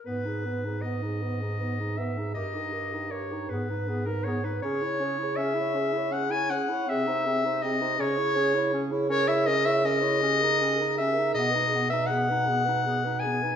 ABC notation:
X:1
M:6/8
L:1/16
Q:3/8=53
K:G#m
V:1 name="Clarinet"
B4 d6 e2 | d4 c2 B3 A c B | c4 e4 f g f2 | e4 d2 c4- c z |
c e d e d6 e2 | d3 e f6 g2 |]
V:2 name="Alto saxophone"
B G B G B G B G B G B G | A =G A G A G ^G B G B G B | G c G c G c G c G c G c | G ^B G B G B G c G c G c |
A c A c A c =G A G A G A | G B G B G B G B G B G B |]
V:3 name="Clarinet"
B, D B, D B, D B, D B, D B, D | =G D G D G D B, D B, D B, D | C E C E C E C E C E C E | ^B, D B, D B, D C E C E C E |
C E C E C E C D C D C D | B, D B, D B, D B, D B, D B, D |]
V:4 name="Bass clarinet" clef=bass
G,,12 | =G,,6 ^G,,6 | C,8- C,2 z2 | ^B,,6 C,6- |
C,12 | B,,12 |]